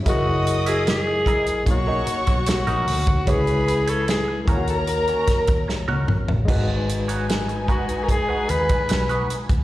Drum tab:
CC |----------------|----------------|x---------------|
HH |x-xxx-xxx-xxxxox|xxxxx-xxxxxx----|--xxxxxxx-xxxxxx|
SD |----o-------o---|----o-----o-o---|----o-------o---|
T1 |----------------|-------------o--|----------------|
T2 |----------------|--------------o-|----------------|
FT |----------------|---------------o|----------------|
BD |o-----o-o--o---o|o-----o---oo----|o-----o-o--o---o|